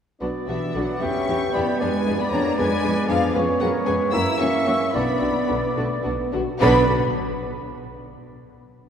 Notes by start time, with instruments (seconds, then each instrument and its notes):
0.21 double bass section B1, viola section F#3 B3, bassoon B3, violin section D4 F#4, french horn section D4 F#4, oboe D5
0.47 double bass section B1, cello section E3, viola section F#3 B3, violin section D4 F#4 E5, flute G4
0.74 double bass section B1, cello section F#3, viola section F#3 B3, violin section D4 F#4 F#5, flute A4
1.00 double bass section E2, viola section E3 B3, french horn section B3 G4, cello section C#4, violin section E4 G4 C#6, flute E5, oboe G5
1.28 double bass section E2, viola section E3 B3, violin section E4 G4
1.53 double bass section E2, viola section E3 B3, cello section B3, violin section E4 G4 B5, flute D5
1.79 double bass section F2, cello section G#3, viola section G#3 B3, french horn section D4, violin section D4 G#4 G#5, flute B4, oboe D5
2.06 double bass section F2, viola section G#3 B3, violin section D4 G#4
2.19 cello section B3, flute D5, violin section B5
2.31 double bass section F2, viola section G#3 B3, cello section A#3, violin section D4 G#4 A#5, flute C#5
2.56 double bass section F2, viola section G#3 B3, cello section G#3, violin section D4 G#4 G#5, flute B4
2.83 double bass section F2, viola section G#3 B3, violin section D4 G#4
3.07 double bass section F2, cello section F3, viola section G#3 B3, violin section D4 G#4 F5, flute G#4
3.34 double bass section F2, viola section G#3 B3, bassoon B3, violin section C#4 G#4, french horn section C#4, oboe C#5
3.60 double bass section F2, cello section F#3, viola section G#3 B3, violin section C#4 G#4 F#5, flute A#4
3.74 oboe C#5
3.85 double bass section F2, viola section G#3 B3, cello section G#3, violin section C#4 G#4 G#5, flute B4
4.12 double bass section F#2, viola section E3 A#3, french horn section A#3 E4, bassoon A#3, violin section C#4 F#4 E6, cello section E4, oboe E5, flute A#5
4.37 double bass section F#2, viola section E3 A#3, violin section C#4 F#4 C#6, cello section C#4, flute E5
4.65 double bass section F#2, viola section E3 A#3, violin section C#4 F#4
4.93 double bass section B1, viola section D3 B3, cello section B3, french horn section B3 D4, bassoon B3, violin section D4 F#4 B5, flute D5, oboe D5
5.21 double bass section B1, viola section D3 B3, violin section D4 F#4
5.47 double bass section B1, viola section D3 B3, violin section D4 F#4
5.75 double bass section B1, viola section D3 B3, french horn section A3, violin section D4 F#4
6.03 double bass section B1, viola section D3 B3, french horn section B3, violin section D4 F#4
6.32 double bass section B1, viola section D3 B3, violin section D4 F#4, french horn section F#4
6.59 double bass section B1, viola section D3 D4, cello section B3, bassoon B3, french horn section B3 D4, violin section F#4 B4 B5, oboe D5, flute B5